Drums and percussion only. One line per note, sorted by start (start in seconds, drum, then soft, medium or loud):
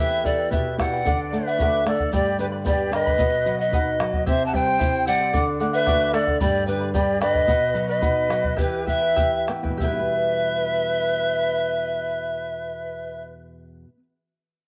0.25 bombo low medium
0.25 shaker medium
0.52 bombo low medium
0.52 shaker loud
0.79 bombo rim medium
0.79 bombo low medium
0.79 shaker medium
1.06 bombo low medium
1.06 shaker loud
1.33 shaker medium
1.60 bombo low medium
1.60 shaker loud
1.86 bombo rim soft
1.86 shaker medium
2.00 bombo low medium
2.13 bombo low medium
2.13 shaker medium
2.39 shaker medium
2.65 bombo low medium
2.65 shaker loud
2.92 bombo rim soft
2.92 shaker medium
3.07 bombo low medium
3.19 bombo low medium
3.19 shaker loud
3.46 shaker medium
3.73 bombo low medium
3.73 shaker loud
4.00 bombo rim medium
4.00 shaker medium
4.13 bombo low medium
4.27 bombo low medium
4.27 shaker medium
4.54 bombo low medium
4.81 bombo low medium
4.81 shaker loud
5.08 shaker medium
5.34 bombo low medium
5.34 shaker medium
5.60 shaker medium
5.87 bombo low medium
5.87 shaker medium
6.14 bombo rim medium
6.14 shaker medium
6.27 bombo low medium
6.41 bombo low medium
6.41 shaker medium
6.68 shaker medium
6.94 bombo low medium
6.94 shaker loud
7.22 bombo rim medium
7.22 shaker medium
7.35 bombo low medium
7.48 bombo low medium
7.48 shaker medium
7.76 shaker medium
8.02 bombo low medium
8.02 shaker medium
8.30 bombo rim soft
8.30 shaker medium
8.44 bombo low medium
8.58 bombo low medium
8.58 shaker medium
8.87 bombo low medium
9.17 bombo low medium
9.17 shaker loud
9.48 bombo rim medium
9.48 shaker medium
9.65 bombo low medium
9.80 bombo low medium
9.80 shaker medium